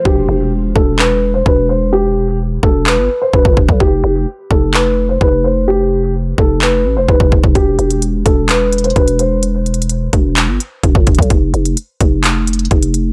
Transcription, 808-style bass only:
\new Staff \with { instrumentName = "808-style bass" } { \clef bass \time 4/4 \key e \phrygian \tempo 4 = 128 e,,8 e,,4 e,,4. e,,4~ | e,,4. e,,8. g,,16 r8 e,,16 g,,16 e,,16 b,,16 | f,,8 f,,8 r8 f,,4. f,,4~ | f,,4. f,,4 a,,16 f,,16 f,,16 f,,16 f,,16 f,,16 |
e,,8 e,,4 e,,4. e,,4~ | e,,4. e,,8. g,,16 r8 e,,16 g,,16 e,,16 b,,16 | f,,8 f,,8 r8 f,,4. f,,4 | }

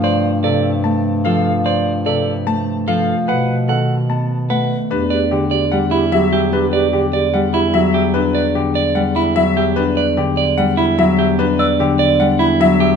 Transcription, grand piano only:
\new Staff \with { instrumentName = "Grand piano" } { \time 4/4 \key f \lydian \tempo 4 = 148 c''8 r8 a'8 r8 a''8 r8 f''8 r8 | c''8 r8 a'8 r8 a''8 r8 f''8 r8 | b'8 r8 a'8 r8 a''8 r8 fis''8 r8 | \key e \minor b'8 r8 g'8 r8 fis''8 r8 e''8 r8 |
b'8 r8 g'8 r8 fis''8 r8 e''8 r8 | b'8 r8 g'8 r8 fis''8 r8 e''8 r8 | b'8 r8 g'8 r8 fis''8 r8 e''8 r8 | b'8 r8 g'8 r8 fis''8 r8 e''8 r8 | }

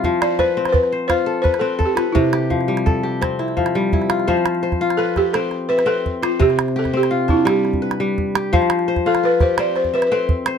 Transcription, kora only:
\new Staff \with { instrumentName = "Kora" } { \time 12/8 \key f \lydian \tempo 4. = 113 << { <e' f'>8 c''8 b'4. c''4 a'8 b'4 a'8 b'8~ | b'8 g'8 f4 a'8 g'4 e'8 f4 e'8 f'8 | c''4 c''4 b'8 g'4. e''4. c''8~ | c''8 r8 g'4 f'8 d'4. b'4. g'8 |
c''4 c''4 b'8 g'4. e''4. c''8 | } \\ { f4 r8 c'4 r8 f'4 r8 c'4 r8 | c4 r8 g4 r8 c'4 r8 g4 r8 | f4 r8 f'4 r8 c'4 r8 c'4 r8 | c4 r8 c'4 r8 g4 r8 g4 r8 |
f4 r8 f'4 r8 c'4 r8 c'4 r8 | } >> }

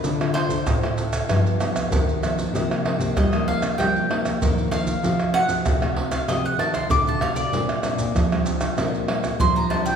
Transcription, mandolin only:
\new Staff \with { instrumentName = "Mandolin" } { \time 4/4 \key c \dorian \tempo 4 = 96 b'8 c''8 r2. | r4 ees''8 f''8 g''4. f''8~ | f''8 ges''8 r8. f''16 ees''16 ges''16 a''16 c'''16 d'''16 a''16 f''16 d''16~ | d''4~ d''16 r4. r16 c'''16 bes''16 a''16 g''16 | }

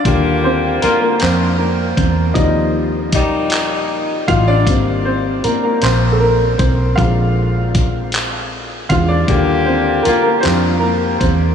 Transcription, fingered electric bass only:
\new Staff \with { instrumentName = "Fingered electric bass" } { \clef bass \time 6/8 \key ees \major \tempo 4. = 52 ees,4 r8 f,4 fes,8 | ees,2~ ees,8 a,,8 | aes,,4 r8 bes,,4 ces,8 | bes,,2~ bes,,8 fes,8 |
ees,4 r8 f,4 fes,8 | }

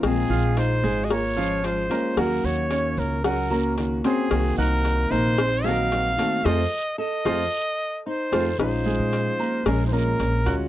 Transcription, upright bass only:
\new Staff \with { instrumentName = "Upright bass" } { \clef bass \time 4/4 \key bes \minor \tempo 4 = 112 bes,,8 bes,,4 aes,,2 r8 | ees,8 ees,4 des,2 r8 | c,8 c,4 bes,,2 r8 | f,8 r4 f,8 r4. f,8 |
bes,,8. bes,8 r8. bes,,4 bes,,8 d,8 | }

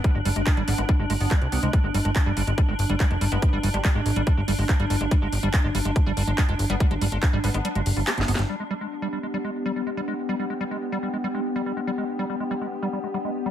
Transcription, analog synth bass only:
\new Staff \with { instrumentName = "Analog synth bass" } { \clef bass \time 4/4 \key g \major \tempo 4 = 142 r16 g,,16 g,,16 g,,16 r16 aes,,16 aes,,16 aes,,16 r16 g,,16 g,,16 g,,16 r16 c,16 c,16 c,16 | r16 g,,16 g,,16 g,,16 r16 g,,16 g,,16 g,,16 r16 g,,16 g,,16 g,,16 r16 f,,16 g,,16 g,,16 | r16 g,,16 g,,16 g,,16 r16 aes,,16 aes,,16 aes,,16 r16 g,,16 g,,16 g,,16 r16 g,,16 g,,16 g,,16 | r16 g,,16 g,,16 g,,16 r16 g,,16 g,,16 g,,16 r16 g,,16 g,,16 g,,16 r16 f,,16 g,,16 g,,16 |
r16 g,,16 g,,16 g,,16 r16 aes,,16 aes,,16 aes,,16 r16 g,,16 g,,16 g,,16 r16 g,,16 g,,16 g,,16 | r1 | r1 | r1 | }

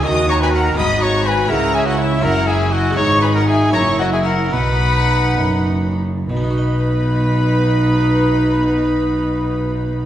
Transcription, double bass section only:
\new Staff \with { instrumentName = "Double bass section" } { \clef bass \time 6/8 \key b \major \tempo 4. = 73 dis,4. gis,,4. | cis,4. fis,,4. | gis,,4. fis,,4. | b,,4. fis,,4. |
b,,2.~ | b,,2. | }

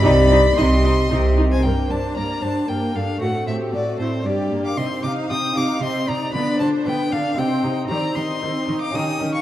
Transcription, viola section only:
\new Staff \with { instrumentName = "Viola section" } { \time 3/4 \key c \minor \tempo 4 = 115 ees'8 ees'8 ees'8 ees'8 ees'8 ees'8 | \key g \minor bes8 d'8 bes8 d'8 bes8 d'8 | a8 c'8 a8 c'8 g8 bes8 | c'8 ees'8 c'8 ees'8 c'8 ees'8 |
b8 d'8 b8 d'8 c'8 ees'8 | \key c \minor c'8 ees'8 c'8 ees'8 ees'8 des'8 | }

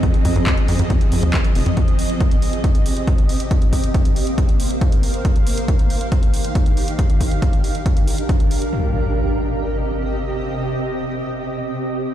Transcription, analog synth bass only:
\new Staff \with { instrumentName = "Analog synth bass" } { \clef bass \time 4/4 \key c \minor \tempo 4 = 138 r8 f,16 f,16 r8 f,16 f,16 r8 f,16 ees,16 r8 f,,16 f,16 | r1 | r1 | r1 |
r1 | r1 | r1 | }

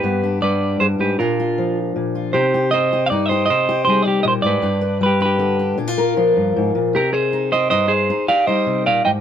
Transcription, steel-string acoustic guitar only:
\new Staff \with { instrumentName = "Steel-string acoustic guitar" } { \time 12/8 \key c \minor \tempo 4. = 104 << { <b g'>8 d'2~ d'8 d'8 f'4 r4 f'8 | ees'8 g'8 ees'8 g'8 ees'8 g'8 ees'8 g'8 ees'2 | d'8 b'4 d'8 d'8 d'8 d'16 f'16 bes'8 f'2 | ees'4 ees'8 g'8 ees'4 ees'8 g'8 ees'2 | } \\ { g,4 g4 g,8 aes,8 bes,4 f4 bes,4 | c2 g,4 c4 g8 c8 bes,8 aes,8 | g,4 g4 d4 bes,4 f8 g,8 aes,8 bes,8 | c2 g,4 r4 g8 c8 bes,8 aes,8 | } >> }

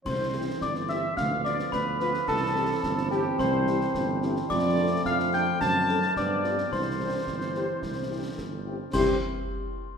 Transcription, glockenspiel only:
\new Staff \with { instrumentName = "Glockenspiel" } { \time 2/4 \key c \major \tempo 4 = 108 c'''4 d'''8 e'''8 | f'''8 d'''8 b''8 b''8 | a''4. g''8 | c'''4. r8 |
d'''4 f'''8 g'''8 | a'''4 d'''4 | c'''2~ | c'''4 r4 |
c'''8 r4. | }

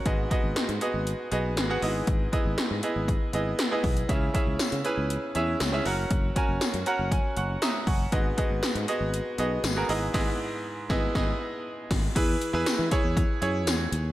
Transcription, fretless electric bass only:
\new Staff \with { instrumentName = "Fretless electric bass" } { \clef bass \time 4/4 \key e \lydian \tempo 4 = 119 gis,,8 r16 gis,,16 r16 gis,16 r16 gis,,8 r16 b,,8 gis,,8 gis,,8 | gis,,8 r16 gis,,16 r16 gis,16 r16 gis,,8 r16 gis,,8 r8 b,,8 | cis,8 r16 cis,16 r16 cis16 r16 cis,8 r16 e,8 cis,8 fis,,8 | fis,,8 r16 fis,,16 r16 fis,16 r16 fis,,8 r16 fis,,8 r8 fis,,8 |
gis,,8 r16 gis,,16 r16 gis,16 r16 gis,,8 r16 b,,8 gis,,8 gis,,8 | gis,,8 r4 gis,,8 gis,,8 r4 gis,,8 | e,8 r16 e,16 r16 e16 r16 e,8 r16 fis,8 e,8 dis,8 | }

